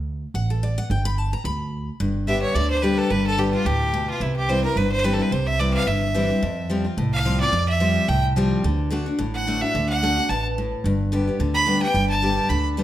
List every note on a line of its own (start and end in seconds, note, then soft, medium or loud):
0.00 0.23 D2 medium
0.34 0.78 A1 medium
0.34 0.50 F#5 medium
0.50 0.62 A4 medium
0.63 0.78 D5 medium
0.78 0.90 F#5 loud
0.90 1.33 G1 loud
0.90 1.05 G5 medium
1.05 1.18 B5 loud
1.18 1.33 A5 medium
1.33 1.45 A#5 medium
1.44 1.88 D2 loud
1.44 1.91 B5 loud
2.00 2.44 G1 medium
2.00 2.53 G2 medium
2.27 2.54 D3 medium
2.27 2.54 G3 medium
2.27 2.55 B3 medium
2.27 2.55 G4 medium
2.27 2.41 E5 medium
2.42 2.57 C#5 medium
2.55 2.99 D2 medium
2.55 2.81 D3 loud
2.55 2.70 D5 loud
2.70 2.84 C5 medium
2.82 3.09 D3 medium
2.82 3.10 G3 loud
2.82 3.10 B3 medium
2.82 3.10 G4 medium
2.82 3.00 B4 medium
2.98 3.12 A4 loud
3.10 3.54 G1 medium
3.10 3.63 G2 medium
3.10 3.26 B4 loud
3.27 3.41 A4 loud
3.37 3.53 D3 medium
3.37 3.53 G3 medium
3.37 3.53 B3 loud
3.37 3.52 G4 medium
3.37 3.53 G4 medium
3.53 3.66 B3 soft
3.53 3.68 F4 medium
3.53 3.65 G4 medium
3.65 4.09 D2 medium
3.65 3.93 A2 loud
3.65 4.09 G4 loud
3.94 4.20 B2 medium
4.10 4.23 F4 medium
4.20 4.64 C2 medium
4.20 4.74 C3 medium
4.20 4.36 E4 medium
4.37 4.51 G4 medium
4.49 4.63 E3 medium
4.49 4.64 G3 medium
4.49 4.64 C4 medium
4.49 4.63 E4 loud
4.49 4.64 C5 loud
4.64 4.77 C4 soft
4.64 4.76 E4 medium
4.64 4.79 A#4 medium
4.76 5.20 G1 medium
4.76 5.30 G2 medium
4.76 4.91 B4 medium
4.92 5.06 C5 loud
5.04 5.19 E3 loud
5.04 5.19 G3 loud
5.04 5.19 C4 loud
5.04 5.18 E4 medium
5.04 5.15 B4 medium
5.14 5.24 A4 medium
5.19 5.32 C4 medium
5.19 5.31 E4 medium
5.19 5.33 B4 medium
5.31 5.75 C2 loud
5.31 5.85 C3 medium
5.31 5.49 C5 medium
5.47 5.61 E5 loud
5.59 5.86 E3 medium
5.59 5.86 G3 medium
5.59 5.87 C4 medium
5.59 5.87 E4 medium
5.59 5.73 D5 loud
5.74 5.89 F5 loud
5.87 6.31 G1 medium
5.87 6.40 G2 medium
5.87 6.70 E5 medium
6.14 6.29 E3 medium
6.14 6.30 G3 medium
6.14 6.30 C4 medium
6.14 6.29 E4 loud
6.30 6.43 C4 soft
6.30 6.42 E4 medium
6.42 6.86 F2 loud
6.42 6.95 F2 loud
6.70 6.85 F3 medium
6.70 6.85 G3 medium
6.70 6.85 C4 medium
6.70 6.83 F4 medium
6.84 6.98 C4 soft
6.84 6.97 F4 medium
6.97 7.41 C2 medium
6.97 7.51 A2 loud
7.13 7.39 F5 loud
7.25 7.40 F3 medium
7.25 7.40 G3 medium
7.25 7.40 C4 medium
7.25 7.40 F4 loud
7.41 7.54 C4 medium
7.41 7.53 F4 medium
7.41 7.66 D5 loud
7.53 7.96 F2 loud
7.53 8.06 F2 medium
7.68 8.10 E5 loud
7.80 8.07 F3 medium
7.80 8.07 G3 medium
7.80 8.07 C4 medium
7.80 8.07 F4 medium
8.08 8.52 C2 loud
8.08 8.61 A2 medium
8.08 8.24 G5 loud
8.36 8.63 F3 medium
8.36 8.63 G3 loud
8.36 8.63 C4 loud
8.36 8.63 F4 loud
8.64 9.07 D2 loud
8.64 8.89 D3 medium
8.90 9.06 D3 medium
8.90 9.06 A3 medium
8.90 9.06 D4 medium
8.90 9.05 F#4 loud
9.06 9.19 D4 soft
9.06 9.18 F#4 medium
9.19 9.62 A1 medium
9.19 9.72 A2 loud
9.34 9.63 F#5 loud
9.47 9.61 D3 medium
9.47 9.62 A3 medium
9.47 9.62 D4 medium
9.47 9.61 F#4 loud
9.61 9.75 D4 soft
9.61 9.74 F#4 medium
9.61 9.89 E5 loud
9.75 10.18 D2 loud
9.75 10.01 D3 medium
9.89 10.31 F#5 loud
10.02 10.17 D3 medium
10.02 10.17 A3 medium
10.02 10.17 D4 medium
10.02 10.17 F#4 loud
10.18 10.30 D4 medium
10.18 10.29 F#4 medium
10.29 10.73 A1 medium
10.29 10.56 B2 medium
10.29 10.45 A5 loud
10.58 10.84 A2 medium
10.84 11.28 G1 loud
10.84 11.38 G2 loud
11.12 11.27 D3 medium
11.12 11.27 G3 medium
11.12 11.27 B3 medium
11.12 11.26 G4 loud
11.27 11.40 B3 soft
11.27 11.39 G4 medium
11.39 11.83 D2 loud
11.39 11.65 D3 loud
11.54 11.80 B5 loud
11.66 11.81 D3 loud
11.66 11.82 G3 loud
11.66 11.82 B3 medium
11.66 11.81 G4 loud
11.83 11.95 B3 soft
11.83 11.95 G4 medium
11.83 12.08 G5 loud
11.94 12.38 G1 medium
11.94 12.48 G2 loud
12.10 12.51 A5 loud
12.22 12.49 D3 medium
12.22 12.49 G3 medium
12.22 12.49 B3 medium
12.22 12.49 G4 medium
12.50 12.83 D2 loud
12.50 12.76 D3 medium
12.50 12.65 B5 medium
12.77 12.83 D3 medium
12.77 12.83 G3 medium
12.77 12.83 B3 loud
12.77 12.83 G4 loud